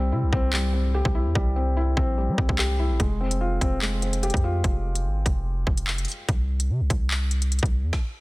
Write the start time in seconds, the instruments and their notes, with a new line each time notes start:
Already playing: 808-style bass C2, felt piano G3 C4
0.12 808-style bass C3, felt piano E4
0.23 808-style bass C2
0.33 808-style bass C2, felt piano C4, kick
0.53 felt piano G3, clap
0.74 felt piano C4
0.94 felt piano G4
1.05 808-style bass C2, kick
1.15 felt piano E4
1.26 808-style bass E2
1.35 808-style bass C2, felt piano G3, kick
1.56 felt piano C4
1.77 felt piano E4
1.97 808-style bass A#1, felt piano C4, kick
2.18 felt piano G3
2.28 808-style bass G3
2.38 808-style bass C2, felt piano C4, kick
2.49 808-style bass C2, kick
2.59 felt piano G4, clap
2.79 felt piano E4
2.90 808-style bass A#1
3.00 808-style bass F1, felt piano G#3, kick, closed hi-hat
3.21 felt piano C4
3.31 closed hi-hat
3.41 felt piano F4
3.61 808-style bass F1, felt piano C4, kick, closed hi-hat
3.82 felt piano G#3, clap
4.02 felt piano C4, closed hi-hat
4.13 closed hi-hat
4.23 felt piano G4, closed hi-hat
4.30 808-style bass F2, kick, closed hi-hat
4.37 closed hi-hat
4.44 felt piano F4
4.64 808-style bass F1, kick, closed hi-hat
4.95 closed hi-hat
5.05 808-style bass G#1
5.26 808-style bass F1, kick, closed hi-hat
5.67 808-style bass F1, kick
5.77 closed hi-hat
5.87 clap
5.98 closed hi-hat
6.05 closed hi-hat, open hi-hat
6.12 closed hi-hat
6.29 808-style bass C2, kick, closed hi-hat
6.60 closed hi-hat
6.70 808-style bass C3
6.81 808-style bass C2
6.90 808-style bass C2, kick, closed hi-hat
7.11 clap
7.31 closed hi-hat
7.42 closed hi-hat
7.52 closed hi-hat
7.59 808-style bass C2, kick, closed hi-hat
7.66 closed hi-hat
7.83 808-style bass E2
7.93 kick, snare